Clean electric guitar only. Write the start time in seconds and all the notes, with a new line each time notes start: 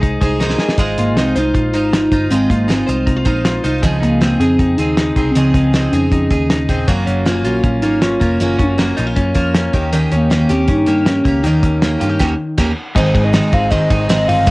Already playing: G#3 G#4 C5
0.02 D#4
0.21 G#4
0.40 D#4
0.60 G#4
0.79 G#3
0.99 F4
1.17 D#4
1.35 C5
1.54 F4
1.74 D#4
1.93 F4
2.13 D#4
2.32 G#3
2.51 F4
2.68 D#4
2.87 C5
3.06 D#4
3.16 F4
3.26 D#4
3.45 F4
3.64 D#4
3.82 C#3
4.01 D#4
4.21 C4
4.40 G#4
4.59 D#4
4.79 C4
4.98 D#4
5.17 C4
5.37 C#3
5.55 D#4
5.75 C4
5.94 G#4
6.12 D#4
6.50 D#4
6.69 C4
6.87 F#3
7.06 C#4
7.26 A#3
7.44 F4
7.64 C#4
7.83 A#3
8.02 C#4
8.20 A#3
8.59 C#4
8.78 A#3
8.97 D#4
9.07 F4
9.16 C#4
9.35 A#3
9.55 C#4
9.74 D#3
9.93 D#3
10.12 C#4
10.31 A#3
10.50 G4
10.68 C#4
10.87 A#3
11.06 C#4
11.25 A#3
11.44 D#3
11.63 C#4
11.82 A#3
12.00 F4
12.09 G4
12.95 G#2 D#4
13.15 G#3
13.34 D#4
13.53 C4
13.72 D#3
13.91 D#4
14.09 C4
14.29 D#4
14.47 G#2